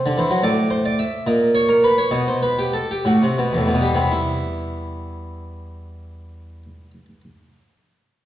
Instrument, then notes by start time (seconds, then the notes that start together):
harpsichord
Already playing: C5
0.06 D3
0.18 E3 C5
0.31 F#3
0.43 A2 D5
0.70 C5
0.85 D5
0.99 E5
1.27 A#2 D#5
1.55 C#5
1.69 A#4
1.84 B4
1.98 C#5
2.11 B2 D#5
2.28 C5
2.43 B4
2.59 G4
2.73 A4
2.91 G4
3.05 A2 F#4
3.23 C3
3.38 B2
3.53 E2
3.57 A2
3.67 B2
3.74 B2
3.81 G3
3.95 C3 B3
4.11 E4